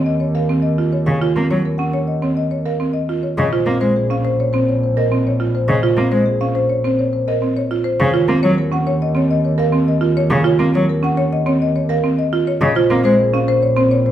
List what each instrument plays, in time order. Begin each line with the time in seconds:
Already playing: double bass D#2, marimba C4 C#5
0.06 marimba D#5
0.20 marimba C#5
0.35 marimba A#4 F5
0.49 marimba C4
0.62 marimba D#5
0.78 marimba F4
0.93 marimba C#5
1.07 cello C#3, marimba F5
1.22 marimba F4 C#5
1.36 cello A#3, marimba C4
1.51 cello F#3, marimba C#5
1.65 marimba A#4
1.78 marimba C#4 F#5
1.93 marimba C#5
2.08 marimba D#5
2.22 marimba C4 C#5
2.37 marimba D#5
2.51 marimba C#5
2.66 marimba A#4 F5
2.80 marimba C4
2.93 marimba D#5
3.09 marimba F4
3.23 marimba C#5
3.38 double bass A#1, cello C#3, marimba D#5
3.52 marimba F4 C5
3.66 cello A#3, marimba C4
3.81 cello G#3, marimba C5
3.96 marimba G#4
4.10 marimba C#4 F5
4.25 marimba C5
4.40 marimba C#5
4.53 marimba C4 C5
4.69 marimba C#5
4.83 marimba C5
4.97 marimba A#4 D#5
5.12 marimba C4
5.27 marimba C#5
5.40 marimba F4
5.55 marimba C5
5.68 cello C#3, marimba D#5
5.83 marimba F4 C5
5.97 cello A#3, marimba C4
6.12 cello G#3, marimba C5
6.26 marimba G#4
6.41 marimba C#4 F5
6.55 marimba C5
6.70 marimba C#5
6.84 marimba C4 C5
6.99 marimba C#5
7.13 marimba C5
7.28 marimba A#4 D#5
7.42 marimba C4
7.57 marimba C#5
7.71 marimba F4
7.84 marimba C5
7.99 double bass D#2, cello C#3, marimba F5
8.14 marimba F4 C#5
8.28 cello A#3, marimba C4
8.43 cello F#3, marimba C#5
8.58 marimba A#4
8.72 marimba C#4 F#5
8.87 marimba C#5
9.02 marimba D#5
9.15 marimba C4 C#5
9.31 marimba D#5
9.45 marimba C#5
9.58 marimba A#4 F5
9.72 marimba C4
9.88 marimba D#5
10.01 marimba F4
10.17 marimba C#5
10.31 cello C#3, marimba F5
10.44 marimba F4 C#5
10.59 cello A#3, marimba C4
10.74 cello F#3, marimba C#5
10.89 marimba A#4
11.03 marimba C#4 F#5
11.17 marimba C#5
11.33 marimba D#5
11.46 marimba C4 C#5
11.62 marimba D#5
11.76 marimba C#5
11.89 marimba A#4 F5
12.04 marimba C4
12.19 marimba D#5
12.33 marimba F4
12.47 marimba C#5
12.61 double bass A#1, cello C#3, marimba D#5
12.75 marimba F4 C5
12.90 cello A#3, marimba C4
13.04 cello G#3, marimba C5
13.19 marimba G#4
13.34 marimba C#4 F5
13.48 marimba C5
13.63 marimba C#5
13.77 marimba C4 C5
13.91 marimba C#5
14.06 marimba C5